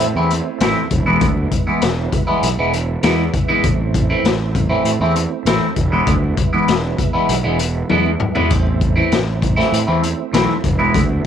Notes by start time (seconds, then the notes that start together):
Already playing: A3 C4 E4 C5 E5
0.00 A2, closed hi-hat
0.15 E2 E3 A3 C4 E4
0.30 muted clean electric guitar stroke, closed hi-hat
0.60 A1 E3 A3 C4 E4, snare, closed hi-hat
0.90 E1 G#3 B3 E4 B4, kick, closed hi-hat, low conga
1.06 E3 G#3 B3 E4, high conga
1.21 D2, kick, closed hi-hat, low conga
1.37 high conga
1.51 kick, closed hi-hat, low conga
1.67 E3 G#3 B3 E4, high conga
1.81 E1, snare, closed hi-hat
2.12 muted clean electric guitar stroke, kick, closed hi-hat, low conga
2.27 E3 G#3 B3 E4
2.43 B1, closed hi-hat
2.58 E1 E3 G#3 B3 E4
2.73 muted clean electric guitar stroke, closed hi-hat
3.03 E2 E3 G#3 B3 E4, snare, closed hi-hat
3.33 kick, closed hi-hat, low conga
3.48 E3 G#3 B3 E4, high conga
3.63 A1 A3 C4 C5, kick, closed hi-hat, low conga
3.80 high conga
3.94 kick, closed hi-hat, low conga
4.10 E3 A3 C4 E4
4.24 A1, snare, closed hi-hat
4.55 muted clean electric guitar stroke, kick, closed hi-hat, low conga
4.69 E3 A3 C4 E4
4.84 A2, closed hi-hat
5.00 E2 E3 A3 C4 E4
5.16 muted clean electric guitar stroke, closed hi-hat
5.45 A1 E3 A3 C4 E4, snare, closed hi-hat
5.75 E1 G#3 B3 B4 E5, kick, closed hi-hat, low conga
5.92 E3 G#3 B3 E4, high conga
6.07 D2, kick, closed hi-hat, low conga
6.24 high conga
6.37 kick, closed hi-hat, low conga
6.53 E3 G#3 B3 E4, high conga
6.68 E1, snare, closed hi-hat
6.98 muted clean electric guitar stroke, kick, closed hi-hat, high conga, low conga
7.13 E3 G#3 B3 E4
7.29 B1, closed hi-hat
7.44 E1 E3 G#3 B3 E4
7.59 muted clean electric guitar stroke, closed hi-hat
7.89 E2 E3 G#3 B3 E4, high tom
8.06 high conga
8.20 mid tom, low conga
8.35 E3 G#3 B3 E4, floor tom, high conga
8.50 A1 A3 C4 C5, kick, closed hi-hat, splash, low conga
8.67 high conga
8.81 kick, closed hi-hat, low conga
8.96 E3 A3 C4 E4, high conga
9.12 A1, snare, closed hi-hat
9.42 muted clean electric guitar stroke, kick, closed hi-hat, low conga
9.56 E3 A3 C4 E4, snare
9.72 A2, closed hi-hat
9.87 E2 E3 A3 C4 E4
10.02 muted clean electric guitar stroke, closed hi-hat
10.33 B1 E3 A3 C4 E4, snare, closed hi-hat
10.63 E1 G#3 B3 B4, kick, closed hi-hat, low conga
10.79 E3 G#3 B3 E4, high conga
10.95 D2, kick, closed hi-hat, low conga
11.09 high conga